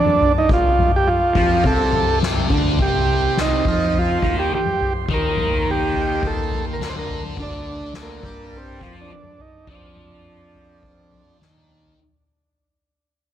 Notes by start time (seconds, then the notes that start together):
Already playing: D4 A4 D5 A5 D6
0.06 mid tom
0.21 floor tom
0.38 D#4
0.49 G5, kick, floor tom
0.53 F4
0.64 floor tom
0.78 floor tom, mid tom
0.92 floor tom
0.96 G4
1.08 F4
1.35 F2 F3 F4, kick, floor tom
1.64 C2 C3 C4 A4, kick, floor tom
1.79 floor tom
1.93 floor tom, mid tom
2.23 snare
2.37 mid tom
2.50 D2 D3 D4, kick, floor tom
2.65 mid tom
2.78 C2 C3 C4 G4 C5 C6, kick, floor tom
2.94 floor tom
3.22 floor tom
3.37 D#4, snare
3.65 F2 F3 F4, kick, floor tom
3.94 floor tom
3.98 F4
4.09 floor tom
4.22 D#2 D#3 D#4, kick, floor tom
4.39 G4
4.55 G4
4.66 mid tom
4.80 floor tom
5.08 D#2 D#3 D#4, kick, floor tom
5.14 A#4
5.23 floor tom
5.37 floor tom, mid tom
5.51 floor tom
5.71 G4
5.94 floor tom
6.22 kick, floor tom
6.27 A4
6.37 floor tom
6.51 floor tom, mid tom
6.73 A#4
6.80 D2 D3 D4 A#4, snare
6.89 C5
6.95 A#4, mid tom
7.08 floor tom
7.23 mid tom
7.36 D2 D3 D4 A4 D5 A5 D6, kick, floor tom
7.43 D4
7.51 floor tom
7.79 floor tom
7.94 snare
8.02 A#3
8.23 G2 G3 G4, kick, floor tom
8.51 floor tom
8.57 C4
8.66 floor tom
8.81 F2 F3 F4, kick, floor tom
9.01 D4
9.12 D4
9.23 mid tom
9.38 D#4, floor tom
9.67 F2 F3 F4, kick, floor tom
9.71 D4
9.82 floor tom
9.95 floor tom, mid tom
10.11 floor tom
10.54 floor tom
10.83 kick, floor tom
10.98 floor tom
11.12 floor tom, mid tom
11.40 D#2 D#3 D#4, snare
11.55 high tom
11.70 mid tom
11.84 floor tom